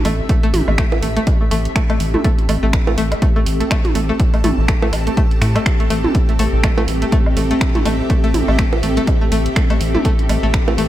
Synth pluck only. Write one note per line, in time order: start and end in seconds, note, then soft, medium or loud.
0.05 0.08 A3 loud
0.29 0.35 A3 medium
0.43 0.46 A3 loud
0.68 0.72 A3 medium
0.78 0.81 A3 loud
1.02 1.08 A3 medium
1.17 1.19 A3 loud
1.41 1.45 A3 medium
1.51 1.55 A3 loud
1.76 1.81 A3 medium
1.90 1.92 A3 loud
2.14 2.18 A3 medium
2.24 2.28 A3 loud
2.49 2.55 A3 medium
2.63 2.65 A3 loud
2.87 2.91 A3 medium
2.98 3.01 A3 loud
3.22 3.28 A3 medium
3.36 3.39 A3 loud
3.60 3.65 A3 medium
3.71 3.74 A3 loud
3.95 4.01 A3 medium
4.09 4.12 A3 loud
4.34 4.38 A3 medium
4.44 4.47 A3 loud
4.68 4.74 A3 medium
4.82 4.85 A3 loud
5.07 5.11 A3 medium
5.17 5.21 A3 loud
5.42 5.47 A3 medium
5.56 5.58 A3 loud
5.80 5.84 A3 medium
5.90 5.94 A3 loud
6.29 6.33 A3 medium
6.39 6.43 A3 loud
6.63 6.69 A3 medium
6.78 6.80 A3 loud
7.02 7.06 A3 medium
7.12 7.16 A3 loud
7.37 7.42 A3 medium
7.51 7.53 A3 loud
7.75 7.79 A3 medium
7.85 7.89 A3 loud
8.10 8.15 A3 medium
8.24 8.26 A3 loud
8.48 8.52 A3 medium
8.59 8.62 A3 loud
8.83 8.89 A3 medium
8.97 9.00 A3 loud
9.21 9.26 A3 medium
9.32 9.35 A3 loud
9.56 9.62 A3 medium
9.70 9.73 A3 medium
9.95 9.99 A3 medium
10.05 10.08 A3 loud
10.29 10.35 A3 medium
10.43 10.46 A3 loud
10.68 10.72 A3 medium
10.78 10.81 A3 loud